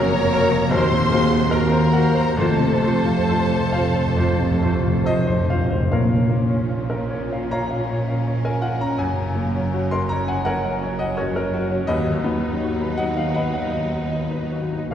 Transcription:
Already playing: double bass section F1, cello section F2, grand piano F#2 C#3 A#3 C#4 A#4, trombone section C#3 A#3, french horn section A#3, clarinet F#4, oboe A#4, violin section A#4 A#5, viola section C#5, flute A#5
0.15 grand piano C#5
0.33 clarinet F#4, oboe A#4, grand piano A#5
0.53 grand piano C#5
0.71 grand piano D#2, double bass section D#2, cello section D#2, trombone section F#3, french horn section C4, clarinet F#4, oboe A#4, violin section C5 C6, viola section C5, flute C6
0.91 grand piano A#2
1.11 grand piano A#3, clarinet F#4, viola section G#4, oboe A#4
1.31 grand piano F#4
1.51 french horn section A#3, clarinet F#4, grand piano A#4, violin section A#4 A#5, viola section A#4, oboe A#4, flute A#5
1.61 violin section C6
1.70 grand piano C5, violin section A#5
1.79 violin section C6
1.88 violin section A#5
1.93 clarinet F#4, oboe A#4, viola section C5, grand piano F#5
1.98 violin section C6
2.07 violin section A#5
2.15 grand piano C5
2.37 double bass section F1, grand piano F2, cello section F2, timpani F2, trombone section F3 C4, french horn section A3, clarinet F4, violin section A4 A5, oboe C5, viola section C5, flute A5
2.48 timpani F2
2.57 timpani F2, grand piano C3
2.75 timpani F2
2.82 timpani F2, grand piano A3, clarinet F4, oboe C5
2.92 timpani F2
3.02 timpani F2, grand piano F4
3.19 timpani F2
3.28 timpani F2, clarinet F4, grand piano A4, oboe C5
3.36 timpani F2
3.45 timpani F2
3.52 timpani F2, grand piano C5
3.63 timpani F2
3.72 timpani F2, oboe C5, grand piano F5
3.76 clarinet F4
3.81 timpani F2
3.89 timpani F2
3.96 timpani F2, grand piano C5
4.06 timpani F2
4.15 timpani F2, grand piano F2, oboe C5
4.20 clarinet F4
4.24 timpani F2
4.33 timpani F2
4.39 timpani F2, grand piano C3
4.51 timpani F2
4.60 timpani F2, grand piano A3, oboe C5
4.64 clarinet F4
4.69 timpani F2
4.78 timpani F2
4.84 timpani F2, grand piano F4
4.95 timpani F2
5.04 timpani F2, grand piano A4 C5 D#5, oboe C5
5.08 clarinet F4
5.13 timpani F2
5.21 timpani F2
5.27 timpani F2, grand piano C5
5.39 timpani F2
5.47 timpani F2, grand piano F5
5.51 clarinet F4, oboe C5
5.56 timpani F2
5.64 timpani F2
5.70 timpani F2, grand piano C5
5.80 timpani F2
5.91 double bass section A#1, grand piano A#2 A#4 C#5 F5, cello section A#2, timpani A#2, viola section F3, violin section C#4 A#4
6.09 grand piano F3
6.29 grand piano A#3
6.49 grand piano C#4
6.69 grand piano F4
6.90 grand piano A#4
7.10 grand piano C#5
7.33 grand piano F5
7.51 grand piano C#5 F5 A#5
7.71 grand piano F5
7.90 grand piano C#5
8.08 grand piano F5
8.27 grand piano C#5
8.45 grand piano A#4 G#5
8.62 grand piano F4 F#5
8.81 grand piano C#4 A#5
8.98 double bass section F#1, grand piano F#2 G#5, cello section F#2, viola section F#3
9.18 grand piano C#3
9.35 grand piano A#3
9.55 grand piano C#4
9.74 grand piano F#4
9.91 grand piano A#4 C6
10.09 grand piano C#5 A#5
10.28 grand piano F#5 G#5
10.45 grand piano A#4 C#5 F#5
10.64 grand piano F#5
10.83 grand piano C#5
10.99 grand piano D#5 F#5
11.17 grand piano F#4 A#4 C#5
11.36 grand piano A#4
11.54 grand piano F#4
11.70 grand piano C#4
11.87 double bass section D#2, cello section D#2, grand piano D#2 F#4 B4 D#5, violin section D#4 B4
12.06 grand piano D#3
12.24 grand piano B3
12.44 grand piano D#4
12.64 grand piano F#4
12.81 grand piano B4
12.98 grand piano D#5 F#5
13.17 grand piano F5 F#5
13.34 grand piano B4 D#5 F#5
13.54 grand piano F#5
13.72 grand piano D#5
13.92 grand piano F#5
14.11 grand piano D#5
14.31 grand piano B4
14.52 grand piano F#4
14.72 grand piano D#4
14.91 violin section C#4, grand piano F5

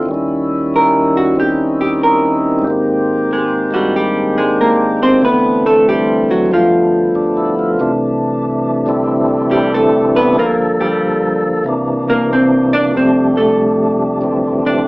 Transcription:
Already playing: tonewheel organ C4 E4
0.03 tonewheel organ D#2 D#3
0.09 tonewheel organ G3 C#4
0.14 tonewheel organ E4
0.76 hollow-body jazz guitar A#4
1.17 hollow-body jazz guitar F#4
1.36 tonewheel organ D#3 C4 D#4
1.40 hollow-body jazz guitar G4
1.81 hollow-body jazz guitar G4
2.03 hollow-body jazz guitar A#4
2.59 tonewheel organ G#2 D#3
2.64 tonewheel organ A#3 G4
2.70 tonewheel organ C4
3.33 hollow-body jazz guitar G#3 G#4
3.71 hollow-body jazz guitar G3 F#4, tonewheel organ G#3 C4 D4
3.96 hollow-body jazz guitar G3 G4
4.38 hollow-body jazz guitar G#3 G#4
4.61 hollow-body jazz guitar A#3 A#4
5.03 hollow-body jazz guitar C4 C5
5.20 tonewheel organ D2 D3 E3 A3
5.24 hollow-body jazz guitar B3 B4, tonewheel organ C4
5.66 hollow-body jazz guitar A3 A4
5.89 hollow-body jazz guitar G3 G4
6.31 hollow-body jazz guitar F#3 F#4
6.46 tonewheel organ G2 D3
6.52 tonewheel organ F3 A3, hollow-body jazz guitar F3 F4
6.57 tonewheel organ B3
7.15 tonewheel organ D4
7.37 tonewheel organ E4
7.59 tonewheel organ F4
7.79 tonewheel organ C2 C3 E3 A3 D4
8.86 tonewheel organ D3 G3 C4 E4
9.51 hollow-body jazz guitar G3 G4
9.74 hollow-body jazz guitar A3 A4
10.16 hollow-body jazz guitar B3 B4
10.34 tonewheel organ G2 D3 F3 A4
10.39 hollow-body jazz guitar A#3 A#4, tonewheel organ A#3
10.81 hollow-body jazz guitar G3 G4
11.64 tonewheel organ C2 C3 E3 A#3
11.69 tonewheel organ D4
12.09 hollow-body jazz guitar A#3 A#4
12.33 hollow-body jazz guitar C4 C5
12.73 hollow-body jazz guitar D4 D5
12.89 tonewheel organ F2 C3
12.94 tonewheel organ G3 A3, hollow-body jazz guitar C4 C5
12.99 tonewheel organ D4
13.37 hollow-body jazz guitar A3 A4
14.21 tonewheel organ D3 E3 A3 C4
14.66 hollow-body jazz guitar D4 D5

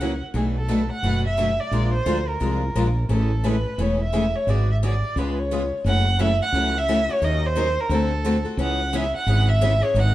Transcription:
Already playing: fretless electric bass C#2, violin F#5
0.01 steel-string acoustic guitar C#3 E3 F#3 A#3 C#4 E4 F#4 A#4
0.34 fretless electric bass B1, steel-string acoustic guitar B2 F#3 A3 D4 F#4, violin G#4
0.38 steel-string acoustic guitar B4
0.57 violin A4
0.68 steel-string acoustic guitar B2 F#3 A3 D4 F#4 B4
0.91 violin F#5
1.02 fretless electric bass F#1, steel-string acoustic guitar B2 F#3 A3 D4 F#4 B4
1.26 violin E5
1.37 steel-string acoustic guitar B2 F#3 A3 D4 F#4 B4
1.60 violin D5
1.71 fretless electric bass A#1, steel-string acoustic guitar F3 G#3 D4 F4 A#4
1.93 violin C5
2.06 fretless electric bass D2, steel-string acoustic guitar F3 G#3 D4 F4 A#4
2.28 violin A#4
2.40 fretless electric bass C2, steel-string acoustic guitar F3 G#3 D4 F4 A#4
2.75 fretless electric bass A#1, steel-string acoustic guitar F3 G#3 D4 F4 A#4
3.09 fretless electric bass A1, steel-string acoustic guitar C#3 E3 G#3 A3 C#4 E4 G#4 A4, violin A4
3.44 steel-string acoustic guitar C#3 E3 G#3 A3 C#4 E4 G#4 A4, violin B4
3.78 fretless electric bass E1, steel-string acoustic guitar C#3 E3 G#3 A3 C#4 E4 G#4 A4, violin C#5
4.02 violin E5
4.13 steel-string acoustic guitar C#3 E3 G#3 A3 C#4 E4 G#4 A4
4.36 violin C#5
4.47 fretless electric bass G#1, steel-string acoustic guitar D3 F#3 B3 F#4 G#4, violin D5
4.71 violin E5
4.83 steel-string acoustic guitar D3 F#3 B3 F#4 G#4, violin D5
5.16 fretless electric bass C#2, steel-string acoustic guitar C#3 G#3 B3 F4 G#4, violin B4
5.39 violin C#5
5.51 steel-string acoustic guitar C#3 G#3 B3 F4 G#4
5.84 fretless electric bass F#1, steel-string acoustic guitar C#3 E3 F#3 A3 C#4 E4 F#4 A4, violin F#5
6.19 steel-string acoustic guitar C#3 E3 F#3 A3 C#4 E4 F#4 A4, violin E5
6.42 violin F#5
6.52 fretless electric bass C#2, steel-string acoustic guitar C#3 E3 F#3 A3 C#4 E4 F#4 A4
6.78 violin E5
6.88 steel-string acoustic guitar C#3 E3 F#3 A3 C#4 E4 F#4 A4
7.09 steel-string acoustic guitar A3 C#4 F#4, violin C#5
7.22 fretless electric bass D#2, steel-string acoustic guitar D#3 F#3 C#4 D#4 A#4, violin D#5
7.47 violin C5
7.55 steel-string acoustic guitar D#3 F#3 C#4 D#4 A#4
7.80 violin A#4
7.89 fretless electric bass D2, steel-string acoustic guitar D3 A3 C4 F#4 A4
7.94 violin A4
8.25 steel-string acoustic guitar D3 A3 C4 F#4 A4
8.45 steel-string acoustic guitar C4 F#4 A4
8.57 fretless electric bass C#2, steel-string acoustic guitar C#3 E3 G#3 B3 C#4 E4 G#4
8.61 violin F#5
8.93 steel-string acoustic guitar C#3 E3 G#3 B3 C#4 E4 G#4, violin E5
9.15 violin F#5
9.26 fretless electric bass G#1, steel-string acoustic guitar C#3 E3 G#3 B3 C#4 E4 G#4
9.49 violin E5
9.61 steel-string acoustic guitar C#3 E3 G#3 B3 C#4 E4 G#4
9.80 steel-string acoustic guitar B3 C#4 G#4, violin C#5
9.94 fretless electric bass G#1, steel-string acoustic guitar D#3 F#3 B3 D#4 G#4
9.99 violin F#5

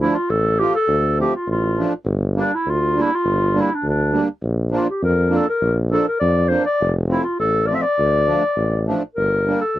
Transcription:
0.01 accordion F3 A3 D4, clarinet E4
0.15 clarinet F4
0.29 tuba A1, clarinet A4
0.60 accordion F3 A3 F4, clarinet G4
0.75 clarinet A4
0.88 tuba D2
1.18 accordion F3 A3 C4, clarinet G4
1.36 clarinet F4
1.47 tuba A1
1.51 clarinet F4
1.77 accordion F3 A3 D4
2.05 tuba G1
2.36 accordion G3 A#3 D4
2.40 clarinet D4
2.55 clarinet E4
2.66 tuba D2
2.70 clarinet F4
2.95 accordion G3 A#3 D4
3.02 clarinet E4
3.15 clarinet F4
3.24 tuba G1
3.55 accordion G3 A#3 D4
3.61 clarinet E4
3.74 clarinet D4
3.83 tuba D2
3.89 clarinet D4
4.12 accordion G3 A#3 D4
4.43 tuba A#1
4.71 accordion F3 A#3 D4
4.76 clarinet F4
4.90 clarinet G4
5.03 tuba F2, clarinet A#4
5.30 accordion F3 A#3 D4
5.36 clarinet A4
5.49 clarinet A#4
5.62 tuba A#1
5.91 accordion F3 A#3 D4, clarinet A4
6.08 clarinet A#4
6.20 tuba F2, clarinet D5
6.49 accordion F3 A#3 D4, clarinet C5
6.65 clarinet D5
6.80 tuba F1
7.08 accordion F3 A3 C4, clarinet E4
7.24 clarinet F4
7.39 tuba A1, clarinet A4
7.67 accordion F3 A3 C4, clarinet D5
7.75 clarinet E5
7.82 clarinet D5
7.99 tuba D2
8.27 accordion F3 A3 D4
8.56 tuba A1
8.87 accordion F3 A3 D4
9.15 tuba G1, clarinet A#4
9.47 accordion G3 A#3 D4
9.61 clarinet A4
9.75 tuba D2

